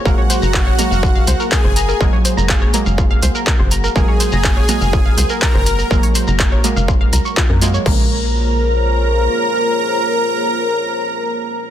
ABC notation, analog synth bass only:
X:1
M:4/4
L:1/16
Q:1/4=123
K:Bbm
V:1 name="Analog synth bass" clef=bass
G,,, z2 G,,,2 z2 G,,,2 z D,, z2 G,,,2 z | G,,, z2 G,,,2 z2 G,,,2 z D,, z2 G,,,2 z | G,,, z2 G,,,2 z2 G,,,2 z D,, z2 G,,,2 z | G,,, z2 G,,,2 z2 G,,,2 z D,, z2 G,,2 z |
B,,,12 z4 | z16 |]